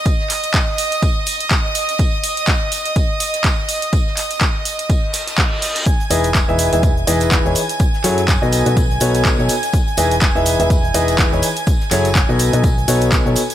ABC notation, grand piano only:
X:1
M:4/4
L:1/16
Q:"Swing 16ths" 1/4=124
K:E
V:1 name="Grand piano"
z16 | z16 | z16 | z2 [E,DEGBd] z2 [E,DEGBe]2 [E,DEGBe] z2 [E,DEGBd]3 [E,DEGBc] z2 |
z2 [F,EFGAc] z2 [B,,DFABd]2 [B,,DFABd] z2 [B,,DFABc]3 [B,,DFABc] z2 | z2 [E,DEGBd] z2 [E,DEGBe]2 [E,DEGBe] z2 [E,DEGBd]3 [E,DEGBc] z2 | z2 [F,EFGAc] z2 [B,,DFABd]2 [B,,DFABd] z2 [B,,DFABc]3 [B,,DFABc] z2 |]